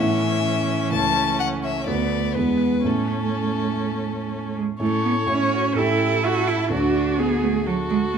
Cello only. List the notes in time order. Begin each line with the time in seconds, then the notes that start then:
Already playing: E3
1.88 A3
2.35 G#3
2.84 A3
4.56 G#3
4.81 A3
5.05 B3
5.30 C#4
5.78 E4
6.25 F#4
6.48 E4
6.72 D4
7.18 B3
7.43 A3
7.66 F#3
7.90 G#3
8.13 A3